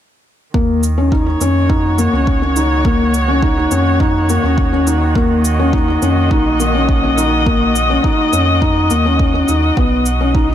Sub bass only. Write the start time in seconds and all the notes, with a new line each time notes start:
0.54 D#2
1.41 F2
2.13 C#2
3.71 F2
4.44 D#2
6.02 F2
6.31 A#1
8.33 F2
8.91 D#2
9.49 D#2
9.77 B1